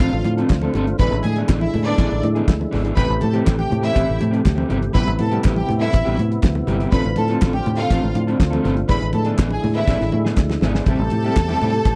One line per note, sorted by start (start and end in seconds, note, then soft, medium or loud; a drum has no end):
0.00 0.10 A1 medium
0.00 2.92 D3 medium
0.00 0.15 A3 medium
0.00 0.13 C4 medium
0.00 0.97 C4 medium
0.00 0.23 F4 medium
0.00 0.97 F4 medium
0.00 0.12 F4 medium
0.00 0.11 A4 medium
0.00 0.23 F5 loud
0.00 kick loud
0.00 clap medium
0.00 closed hi-hat medium
0.12 0.22 A1 loud
0.12 muted clean electric guitar stroke soft
0.24 0.43 A2 medium
0.24 muted clean electric guitar stroke soft
0.24 closed hi-hat medium
0.24 high conga medium
0.37 0.49 A3 medium
0.37 0.50 C4 medium
0.37 0.50 F4 medium
0.37 0.49 A4 medium
0.37 closed hi-hat soft
0.49 0.68 D2 medium
0.49 kick medium
0.49 snare medium
0.49 clap medium
0.49 muted conga soft
0.49 high conga soft
0.62 0.73 A3 soft
0.62 0.74 C4 medium
0.62 0.75 F4 medium
0.62 0.74 A4 medium
0.62 high conga medium
0.74 0.93 G1 medium
0.74 0.90 A3 medium
0.74 0.87 C4 medium
0.74 0.87 F4 medium
0.74 0.86 A4 loud
0.74 closed hi-hat medium
0.74 muted conga soft
0.74 low conga medium
0.87 muted clean electric guitar stroke soft
0.87 closed hi-hat soft
0.99 1.08 A1 loud
0.99 1.15 E3 medium
0.99 2.96 G#3 medium
0.99 1.13 B3 medium
0.99 1.12 D4 medium
0.99 2.96 E4 medium
0.99 1.11 G#4 medium
0.99 1.09 B4 loud
0.99 1.09 B5 loud
0.99 kick loud
0.99 closed hi-hat medium
0.99 muted conga soft
0.99 low conga medium
1.12 1.21 A1 loud
1.12 muted clean electric guitar stroke soft
1.23 1.42 A2 medium
1.23 1.33 G#4 medium
1.23 1.33 G#5 medium
1.23 muted clean electric guitar stroke soft
1.23 closed hi-hat medium
1.23 high conga medium
1.36 1.47 E3 medium
1.36 1.49 B3 medium
1.36 1.49 D4 medium
1.36 1.48 G#4 medium
1.36 closed hi-hat soft
1.49 1.67 A1 medium
1.49 1.64 E3 medium
1.49 1.62 B3 medium
1.49 1.61 D4 medium
1.49 1.61 G#4 medium
1.49 kick loud
1.49 snare loud
1.49 clap medium
1.61 1.71 E4 medium
1.61 1.71 E5 medium
1.61 muted clean electric guitar stroke soft
1.61 high conga medium
1.74 1.92 A2 loud
1.74 muted clean electric guitar stroke soft
1.74 open hi-hat medium
1.74 muted conga soft
1.74 low conga medium
1.85 1.97 E3 soft
1.85 1.97 B3 medium
1.85 2.20 D4 medium
1.85 1.98 D4 medium
1.85 1.98 B4 medium
1.85 2.20 D5 medium
1.85 closed hi-hat soft
1.98 2.07 A1 loud
1.98 2.13 E3 medium
1.98 2.11 B3 medium
1.98 2.11 D4 medium
1.98 2.10 G#4 medium
1.98 kick loud
1.98 clap medium
1.98 closed hi-hat medium
1.98 muted conga soft
1.98 high conga medium
2.10 2.20 A1 medium
2.10 muted clean electric guitar stroke soft
2.10 closed hi-hat soft
2.23 2.41 A2 loud
2.23 muted clean electric guitar stroke soft
2.23 closed hi-hat medium
2.23 muted conga soft
2.23 high conga medium
2.35 2.47 E3 soft
2.35 2.47 B3 medium
2.35 2.47 D4 medium
2.35 2.47 G#4 medium
2.35 closed hi-hat soft
2.48 2.66 D2 medium
2.48 muted clean electric guitar stroke soft
2.48 kick loud
2.48 snare loud
2.48 clap medium
2.48 muted conga soft
2.48 high conga medium
2.60 muted clean electric guitar stroke soft
2.60 high conga medium
2.71 2.91 G#1 medium
2.71 2.85 E3 medium
2.71 2.84 B3 medium
2.71 2.83 D4 medium
2.71 2.82 G#4 medium
2.71 snare soft
2.71 open hi-hat medium
2.71 muted conga soft
2.71 low conga medium
2.84 2.94 E3 soft
2.84 2.96 B3 medium
2.84 2.96 D4 medium
2.84 2.96 G#4 medium
2.84 closed hi-hat medium
2.96 3.06 A1 medium
2.96 6.88 C3 medium
2.96 3.11 E3 medium
2.96 3.08 A3 medium
2.96 4.93 A3 medium
2.96 3.08 C4 medium
2.96 4.93 G4 medium
2.96 3.07 G4 medium
2.96 3.07 B4 medium
2.96 3.06 B5 loud
2.96 kick loud
2.96 closed hi-hat medium
2.96 muted conga soft
2.96 low conga medium
3.08 3.19 A1 medium
3.08 muted clean electric guitar stroke soft
3.21 3.41 A2 medium
3.21 3.31 A4 medium
3.21 3.31 A5 medium
3.21 muted clean electric guitar stroke soft
3.21 closed hi-hat medium
3.21 muted conga soft
3.21 high conga medium
3.33 3.43 E3 medium
3.33 3.44 A3 medium
3.33 3.44 C4 medium
3.33 3.45 G4 medium
3.33 closed hi-hat soft
3.44 3.65 A1 medium
3.44 3.60 E3 medium
3.44 3.57 A3 medium
3.44 3.56 C4 medium
3.44 3.56 G4 loud
3.44 kick loud
3.44 snare loud
3.44 clap loud
3.57 3.68 G4 medium
3.57 3.68 G5 medium
3.57 muted clean electric guitar stroke soft
3.57 high conga medium
3.69 3.90 A2 medium
3.69 muted clean electric guitar stroke soft
3.69 closed hi-hat medium
3.69 low conga medium
3.81 3.92 E3 soft
3.81 3.92 A3 soft
3.81 3.93 C4 soft
3.81 4.19 E4 medium
3.81 3.94 G4 soft
3.81 4.18 E5 medium
3.81 closed hi-hat soft
3.93 4.05 A1 medium
3.93 4.09 E3 medium
3.93 4.06 A3 medium
3.93 4.06 C4 medium
3.93 4.06 G4 medium
3.93 kick loud
3.93 clap medium
3.93 closed hi-hat medium
3.93 high conga medium
4.07 4.18 A1 medium
4.07 muted clean electric guitar stroke medium
4.18 4.39 A2 medium
4.18 muted clean electric guitar stroke soft
4.18 closed hi-hat medium
4.18 muted conga soft
4.18 high conga medium
4.31 4.42 E3 soft
4.31 4.43 A3 medium
4.31 4.43 C4 medium
4.31 4.43 G4 medium
4.31 closed hi-hat soft
4.43 4.63 D2 medium
4.43 muted clean electric guitar stroke soft
4.43 kick loud
4.43 snare medium
4.43 clap medium
4.43 high conga medium
4.55 4.67 E3 soft
4.55 4.68 A3 medium
4.55 4.68 C4 medium
4.55 4.68 G4 medium
4.55 high conga medium
4.68 4.88 G1 medium
4.68 4.84 E3 medium
4.68 4.81 A3 medium
4.68 4.81 C4 loud
4.68 4.80 G4 medium
4.68 closed hi-hat medium
4.68 low conga medium
4.81 muted clean electric guitar stroke soft
4.81 closed hi-hat soft
4.93 5.04 A1 medium
4.93 5.09 G3 medium
4.93 5.06 B3 medium
4.93 6.90 B3 medium
4.93 5.05 E4 loud
4.93 6.90 E4 medium
4.93 5.05 G4 loud
4.93 5.04 B4 loud
4.93 5.04 B5 loud
4.93 kick loud
4.93 closed hi-hat medium
4.93 low conga medium
5.06 5.16 A1 medium
5.06 muted clean electric guitar stroke soft
5.19 5.38 A2 medium
5.19 5.30 A4 medium
5.19 5.30 A5 medium
5.19 muted clean electric guitar stroke soft
5.19 closed hi-hat medium
5.19 muted conga soft
5.19 high conga medium
5.31 5.42 G3 medium
5.31 5.43 B3 soft
5.31 5.43 E4 medium
5.31 5.43 G4 medium
5.31 closed hi-hat soft
5.43 5.62 A1 loud
5.43 5.58 G3 medium
5.43 5.57 B3 medium
5.43 5.56 E4 medium
5.43 5.55 G4 medium
5.43 kick loud
5.43 snare loud
5.43 clap medium
5.56 5.67 G4 medium
5.56 5.66 G5 medium
5.56 muted clean electric guitar stroke soft
5.56 high conga medium
5.68 5.87 A2 medium
5.68 muted clean electric guitar stroke soft
5.68 closed hi-hat medium
5.68 muted conga soft
5.68 low conga medium
5.81 5.92 G3 soft
5.81 5.92 B3 soft
5.81 6.16 E4 medium
5.81 5.93 E4 medium
5.81 5.92 A4 medium
5.81 6.16 E5 medium
5.81 closed hi-hat soft
5.92 6.03 A1 medium
5.92 kick loud
5.92 clap medium
5.92 closed hi-hat medium
5.92 high conga medium
6.05 6.15 A1 medium
6.05 6.17 G3 medium
6.05 6.18 B3 medium
6.05 6.17 E4 medium
6.05 6.18 G4 medium
6.05 closed hi-hat soft
6.17 6.37 A2 medium
6.17 muted clean electric guitar stroke soft
6.17 closed hi-hat medium
6.17 muted conga soft
6.17 high conga medium
6.31 muted clean electric guitar stroke soft
6.31 closed hi-hat soft
6.42 6.61 D2 medium
6.42 muted clean electric guitar stroke soft
6.42 kick loud
6.42 snare medium
6.42 clap medium
6.42 muted conga soft
6.42 high conga medium
6.55 muted clean electric guitar stroke medium
6.55 high conga medium
6.67 6.85 G1 medium
6.67 6.80 G3 medium
6.67 6.80 B3 medium
6.67 6.79 E4 medium
6.67 6.79 G4 medium
6.67 closed hi-hat medium
6.67 low conga medium
6.80 6.92 G3 soft
6.80 6.92 B3 medium
6.80 6.92 E4 medium
6.80 6.91 G4 medium
6.80 closed hi-hat soft
6.92 7.01 A1 medium
6.92 10.84 D3 medium
6.92 7.07 A3 medium
6.92 8.88 C4 medium
6.92 7.05 C4 medium
6.92 8.88 F4 medium
6.92 7.04 F4 medium
6.92 7.03 A4 medium
6.92 7.02 B4 medium
6.92 7.02 B5 loud
6.92 kick loud
6.92 closed hi-hat medium
6.92 muted conga soft
6.92 low conga medium
7.04 7.14 A1 medium
7.04 muted clean electric guitar stroke medium
7.04 closed hi-hat soft
7.16 7.35 A2 medium
7.16 7.27 A4 medium
7.16 7.27 A5 medium
7.16 muted clean electric guitar stroke soft
7.16 closed hi-hat medium
7.16 muted conga soft
7.16 high conga medium
7.28 7.40 A3 soft
7.28 7.40 C4 medium
7.28 7.41 F4 medium
7.28 7.41 A4 medium
7.28 closed hi-hat soft
7.41 7.60 A1 loud
7.41 7.56 A3 medium
7.41 7.56 C4 medium
7.41 7.55 F4 loud
7.41 7.54 A4 medium
7.41 kick loud
7.41 snare loud
7.41 clap medium
7.41 muted conga soft
7.53 7.63 G4 medium
7.53 7.64 G5 medium
7.53 muted clean electric guitar stroke soft
7.53 high conga medium
7.66 7.84 A2 medium
7.66 muted clean electric guitar stroke soft
7.66 closed hi-hat medium
7.66 muted conga soft
7.66 low conga medium
7.77 7.90 A3 soft
7.77 7.91 C4 soft
7.77 8.13 F4 medium
7.77 7.90 F4 soft
7.77 7.90 A4 medium
7.77 8.12 F5 medium
7.77 closed hi-hat soft
7.90 8.00 A1 loud
7.90 8.06 A3 medium
7.90 8.03 C4 medium
7.90 8.02 F4 medium
7.90 8.01 A4 medium
7.90 kick loud
7.90 clap medium
7.90 closed hi-hat medium
7.90 muted conga soft
7.90 high conga medium
8.02 8.12 A1 loud
8.02 muted clean electric guitar stroke soft
8.02 closed hi-hat soft
8.15 8.33 A2 medium
8.15 muted clean electric guitar stroke soft
8.15 closed hi-hat medium
8.15 muted conga soft
8.15 high conga medium
8.27 8.38 A3 medium
8.27 8.39 C4 medium
8.27 8.39 F4 medium
8.27 8.39 A4 medium
8.27 closed hi-hat soft
8.39 8.58 D2 medium
8.39 muted clean electric guitar stroke soft
8.39 kick loud
8.39 snare medium
8.39 clap medium
8.39 high conga medium
8.51 8.61 A3 medium
8.51 8.62 C4 medium
8.51 8.63 F4 medium
8.51 8.63 A4 medium
8.51 closed hi-hat soft
8.51 high conga medium
8.62 8.83 G1 medium
8.62 8.79 A3 medium
8.62 8.77 C4 medium
8.62 8.77 F4 medium
8.62 8.76 A4 loud
8.62 snare soft
8.62 closed hi-hat medium
8.62 low conga medium
8.77 muted clean electric guitar stroke soft
8.77 closed hi-hat soft
8.88 8.99 A1 medium
8.88 9.04 E3 medium
8.88 10.85 G#3 medium
8.88 9.02 B3 medium
8.88 9.01 D4 medium
8.88 10.85 E4 medium
8.88 9.00 G#4 medium
8.88 8.99 B4 medium
8.88 9.00 B5 loud
8.88 kick loud
8.88 closed hi-hat medium
8.88 muted conga soft
8.88 low conga medium
9.01 9.11 A1 medium
9.01 muted clean electric guitar stroke soft
9.01 closed hi-hat soft
9.13 9.32 A2 medium
9.13 9.24 A4 medium
9.13 9.24 A5 medium
9.13 muted clean electric guitar stroke soft
9.13 closed hi-hat medium
9.13 muted conga soft
9.13 high conga medium
9.25 9.36 E3 medium
9.25 9.37 B3 medium
9.25 9.37 D4 medium
9.25 9.38 G#4 medium
9.25 closed hi-hat soft
9.37 9.57 A1 medium
9.37 9.53 E3 medium
9.37 9.51 B3 medium
9.37 9.50 D4 medium
9.37 9.49 G#4 loud
9.37 kick loud
9.37 snare loud
9.37 clap loud
9.50 9.61 G#4 medium
9.50 9.62 G#5 medium
9.50 muted clean electric guitar stroke soft
9.50 high conga medium
9.62 9.82 A2 medium
9.62 muted clean electric guitar stroke soft
9.62 open hi-hat medium
9.62 muted conga soft
9.62 low conga medium
9.75 9.87 E3 soft
9.75 9.87 B3 soft
9.75 9.88 D4 soft
9.75 10.10 E4 medium
9.75 9.87 B4 medium
9.75 10.11 E5 medium
9.75 closed hi-hat soft
9.88 9.97 A1 loud
9.88 10.03 E3 medium
9.88 10.01 B3 medium
9.88 10.00 D4 loud
9.88 9.99 G#4 medium
9.88 kick loud
9.88 snare medium
9.88 clap medium
9.88 high conga medium
10.00 10.10 A1 medium
10.00 muted clean electric guitar stroke soft
10.00 snare soft
10.12 10.31 A2 loud
10.12 muted clean electric guitar stroke soft
10.12 high conga medium
10.25 10.37 E3 soft
10.25 10.37 B3 soft
10.25 10.37 D4 medium
10.25 10.37 G#4 medium
10.25 snare medium
10.36 10.55 D2 medium
10.36 muted clean electric guitar stroke soft
10.36 kick loud
10.36 snare medium
10.36 clap medium
10.36 high conga soft
10.50 muted clean electric guitar stroke soft
10.50 snare medium
10.50 high conga medium
10.61 10.80 G#1 medium
10.61 10.76 E3 medium
10.61 10.75 B3 medium
10.61 10.74 D4 medium
10.61 10.74 G#4 medium
10.61 snare loud
10.61 low conga medium
10.75 10.87 E3 soft
10.75 10.87 B3 medium
10.75 10.87 D4 medium
10.75 10.87 G#4 medium
10.75 snare medium
10.86 10.96 A1 medium
10.86 11.95 C3 medium
10.86 11.02 G3 medium
10.86 11.95 A3 medium
10.86 11.00 C4 medium
10.86 11.00 E4 medium
10.86 11.95 G4 medium
10.86 10.99 G4 medium
10.86 11.95 A4 loud
10.86 11.95 A5 loud
10.86 kick loud
10.86 closed hi-hat medium
10.86 muted conga soft
10.86 low conga medium
10.99 11.08 A1 medium
10.99 muted clean electric guitar stroke soft
11.10 11.30 A2 medium
11.10 muted clean electric guitar stroke soft
11.10 closed hi-hat medium
11.10 muted conga soft
11.10 high conga medium
11.23 11.36 G3 medium
11.23 11.37 C4 medium
11.23 11.37 E4 medium
11.23 11.36 G4 medium
11.23 closed hi-hat soft
11.36 11.55 E2 medium
11.36 kick loud
11.36 snare medium
11.36 clap medium
11.36 muted conga soft
11.48 11.61 G3 medium
11.48 11.61 C4 medium
11.48 11.62 E4 medium
11.48 11.62 G4 medium
11.48 closed hi-hat soft
11.48 high conga medium
11.61 11.79 A2 medium
11.61 11.73 G3 medium
11.61 11.73 C4 medium
11.61 11.73 E4 medium
11.61 11.73 G4 medium
11.61 closed hi-hat medium
11.61 muted conga soft
11.61 low conga medium
11.72 muted clean electric guitar stroke soft
11.72 closed hi-hat soft
11.85 11.95 A1 loud
11.85 muted clean electric guitar stroke soft
11.85 kick loud
11.85 clap medium
11.85 closed hi-hat medium
11.85 high conga medium